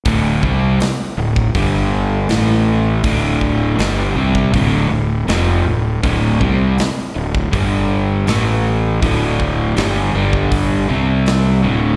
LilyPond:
<<
  \new Staff \with { instrumentName = "Overdriven electric guitar" } { \clef bass \time 4/4 \key g \major \tempo 4 = 80 <d, a, d>8 <c g c'>8 r8 <d, a,>8 <g, d g>4 <a, e a>4 | <d, a, d>4 <g, d g>8 <c g c'>8 <d, a, d>8 <d, a,>8 <f, c f>8 <d, a,>8 | <d, a, d>8 <c g c'>8 r8 <d, a,>8 <g, d g>4 <a, e a>4 | <d, a, d>4 <g, d g>8 <g, d g>4 <c g c'>4 <d, a, d>8 | }
  \new Staff \with { instrumentName = "Fingered electric bass" } { \clef bass \time 4/4 \key g \major d,,8 c,8 r8 d,,8 g,,4 a,,4 | d,,4 g,,8 c,8 d,,8 d,,8 f,,8 d,,8 | d,,8 c,8 r8 d,,8 g,,4 a,,4 | d,,4 g,,8 g,,4 c,4 d,,8 | }
  \new DrumStaff \with { instrumentName = "Drums" } \drummode { \time 4/4 <hho bd>8 bd8 <hho sn>8. bd16 <hho bd>4 <hho sn>4 | <hho bd>8 bd8 <hho sn>8. bd16 <hho bd>4 <hho sn>4 | <hho bd>8 bd8 <hho sn>8. bd16 <hho bd>4 <hho sn>4 | <hho bd>8 bd8 <hho sn>8. bd16 <hho bd>4 <hho sn>4 | }
>>